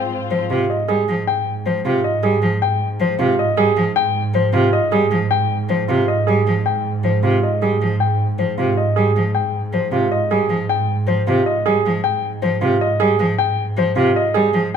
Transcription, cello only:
0, 0, Header, 1, 2, 480
1, 0, Start_track
1, 0, Key_signature, -4, "major"
1, 0, Tempo, 384615
1, 865, Time_signature, 7, 3, 24, 8
1, 18430, End_track
2, 0, Start_track
2, 0, Title_t, "Cello"
2, 0, Program_c, 0, 42
2, 384, Note_on_c, 0, 53, 55
2, 564, Note_off_c, 0, 53, 0
2, 627, Note_on_c, 0, 48, 70
2, 806, Note_off_c, 0, 48, 0
2, 1107, Note_on_c, 0, 55, 57
2, 1286, Note_off_c, 0, 55, 0
2, 1352, Note_on_c, 0, 53, 57
2, 1530, Note_off_c, 0, 53, 0
2, 2071, Note_on_c, 0, 53, 59
2, 2248, Note_off_c, 0, 53, 0
2, 2312, Note_on_c, 0, 48, 75
2, 2489, Note_off_c, 0, 48, 0
2, 2785, Note_on_c, 0, 55, 57
2, 2965, Note_off_c, 0, 55, 0
2, 3021, Note_on_c, 0, 53, 60
2, 3202, Note_off_c, 0, 53, 0
2, 3745, Note_on_c, 0, 53, 68
2, 3925, Note_off_c, 0, 53, 0
2, 3982, Note_on_c, 0, 48, 77
2, 4163, Note_off_c, 0, 48, 0
2, 4459, Note_on_c, 0, 55, 63
2, 4641, Note_off_c, 0, 55, 0
2, 4699, Note_on_c, 0, 53, 65
2, 4881, Note_off_c, 0, 53, 0
2, 5414, Note_on_c, 0, 53, 62
2, 5598, Note_off_c, 0, 53, 0
2, 5651, Note_on_c, 0, 48, 81
2, 5836, Note_off_c, 0, 48, 0
2, 6139, Note_on_c, 0, 55, 65
2, 6321, Note_off_c, 0, 55, 0
2, 6380, Note_on_c, 0, 53, 62
2, 6561, Note_off_c, 0, 53, 0
2, 7101, Note_on_c, 0, 53, 66
2, 7282, Note_off_c, 0, 53, 0
2, 7350, Note_on_c, 0, 48, 80
2, 7528, Note_off_c, 0, 48, 0
2, 7834, Note_on_c, 0, 55, 59
2, 8010, Note_off_c, 0, 55, 0
2, 8073, Note_on_c, 0, 53, 59
2, 8250, Note_off_c, 0, 53, 0
2, 8783, Note_on_c, 0, 53, 53
2, 8964, Note_off_c, 0, 53, 0
2, 9025, Note_on_c, 0, 48, 73
2, 9205, Note_off_c, 0, 48, 0
2, 9509, Note_on_c, 0, 55, 53
2, 9687, Note_off_c, 0, 55, 0
2, 9753, Note_on_c, 0, 53, 54
2, 9930, Note_off_c, 0, 53, 0
2, 10463, Note_on_c, 0, 53, 53
2, 10644, Note_off_c, 0, 53, 0
2, 10711, Note_on_c, 0, 48, 68
2, 10888, Note_off_c, 0, 48, 0
2, 11197, Note_on_c, 0, 55, 55
2, 11372, Note_off_c, 0, 55, 0
2, 11433, Note_on_c, 0, 53, 54
2, 11610, Note_off_c, 0, 53, 0
2, 12143, Note_on_c, 0, 53, 57
2, 12324, Note_off_c, 0, 53, 0
2, 12378, Note_on_c, 0, 48, 70
2, 12560, Note_off_c, 0, 48, 0
2, 12867, Note_on_c, 0, 55, 59
2, 13046, Note_off_c, 0, 55, 0
2, 13100, Note_on_c, 0, 53, 58
2, 13282, Note_off_c, 0, 53, 0
2, 13818, Note_on_c, 0, 53, 62
2, 14000, Note_off_c, 0, 53, 0
2, 14067, Note_on_c, 0, 48, 82
2, 14246, Note_off_c, 0, 48, 0
2, 14553, Note_on_c, 0, 55, 60
2, 14730, Note_off_c, 0, 55, 0
2, 14798, Note_on_c, 0, 53, 61
2, 14973, Note_off_c, 0, 53, 0
2, 15505, Note_on_c, 0, 53, 67
2, 15685, Note_off_c, 0, 53, 0
2, 15742, Note_on_c, 0, 48, 79
2, 15923, Note_off_c, 0, 48, 0
2, 16227, Note_on_c, 0, 55, 67
2, 16406, Note_off_c, 0, 55, 0
2, 16466, Note_on_c, 0, 53, 69
2, 16646, Note_off_c, 0, 53, 0
2, 17183, Note_on_c, 0, 53, 67
2, 17364, Note_off_c, 0, 53, 0
2, 17419, Note_on_c, 0, 48, 84
2, 17601, Note_off_c, 0, 48, 0
2, 17911, Note_on_c, 0, 55, 68
2, 18088, Note_off_c, 0, 55, 0
2, 18143, Note_on_c, 0, 53, 65
2, 18323, Note_off_c, 0, 53, 0
2, 18430, End_track
0, 0, End_of_file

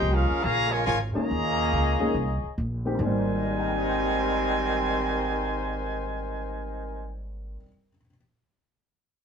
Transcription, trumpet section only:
0, 0, Header, 1, 2, 480
1, 0, Start_track
1, 0, Key_signature, -4, "major"
1, 0, Tempo, 425834
1, 1456, Time_signature, 4, 2, 24, 8
1, 10418, End_track
2, 0, Start_track
2, 0, Title_t, "Trumpet section"
2, 0, Program_c, 0, 61
2, 0, Note_on_c, 0, 63, 86
2, 0, Note_on_c, 0, 68, 91
2, 0, Note_on_c, 0, 72, 91
2, 0, Note_on_c, 0, 79, 101
2, 143, Note_off_c, 0, 68, 0
2, 148, Note_off_c, 0, 63, 0
2, 151, Note_off_c, 0, 72, 0
2, 154, Note_off_c, 0, 79, 0
2, 156, Note_on_c, 0, 61, 85
2, 157, Note_on_c, 0, 68, 88
2, 157, Note_on_c, 0, 70, 90
2, 162, Note_on_c, 0, 77, 97
2, 468, Note_off_c, 0, 77, 0
2, 473, Note_off_c, 0, 68, 0
2, 481, Note_on_c, 0, 77, 101
2, 485, Note_off_c, 0, 61, 0
2, 485, Note_on_c, 0, 73, 98
2, 486, Note_off_c, 0, 70, 0
2, 487, Note_on_c, 0, 68, 99
2, 488, Note_on_c, 0, 82, 115
2, 793, Note_off_c, 0, 73, 0
2, 797, Note_on_c, 0, 65, 91
2, 799, Note_on_c, 0, 70, 91
2, 803, Note_on_c, 0, 80, 106
2, 806, Note_on_c, 0, 73, 89
2, 810, Note_off_c, 0, 77, 0
2, 813, Note_off_c, 0, 68, 0
2, 814, Note_off_c, 0, 82, 0
2, 945, Note_off_c, 0, 70, 0
2, 949, Note_off_c, 0, 73, 0
2, 950, Note_off_c, 0, 65, 0
2, 951, Note_off_c, 0, 80, 0
2, 959, Note_on_c, 0, 70, 93
2, 962, Note_on_c, 0, 73, 91
2, 964, Note_on_c, 0, 65, 96
2, 965, Note_on_c, 0, 80, 104
2, 1108, Note_off_c, 0, 70, 0
2, 1110, Note_off_c, 0, 73, 0
2, 1112, Note_off_c, 0, 65, 0
2, 1113, Note_off_c, 0, 80, 0
2, 1280, Note_on_c, 0, 68, 98
2, 1284, Note_on_c, 0, 73, 93
2, 1284, Note_on_c, 0, 82, 113
2, 1290, Note_on_c, 0, 75, 92
2, 2846, Note_off_c, 0, 68, 0
2, 2848, Note_off_c, 0, 73, 0
2, 2848, Note_off_c, 0, 82, 0
2, 2851, Note_off_c, 0, 75, 0
2, 3374, Note_on_c, 0, 80, 100
2, 3376, Note_on_c, 0, 72, 85
2, 3381, Note_on_c, 0, 63, 90
2, 3381, Note_on_c, 0, 70, 86
2, 8073, Note_off_c, 0, 80, 0
2, 8074, Note_off_c, 0, 72, 0
2, 8076, Note_off_c, 0, 70, 0
2, 8077, Note_off_c, 0, 63, 0
2, 10418, End_track
0, 0, End_of_file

